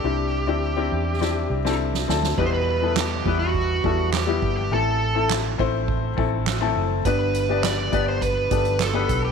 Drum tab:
CC |----------------|x---------------|----------------|----------------|
HH |----------------|----------------|----------------|x-x-x-x-x-xxx-x-|
CP |----------------|----x-------x---|----x-------x---|----x-------x---|
SD |--------o--o-ooo|----o-------o---|----o-------o---|----o-------o---|
BD |----------------|o-----o-o-o---o-|------o-o-o-----|o-----o-o-o---o-|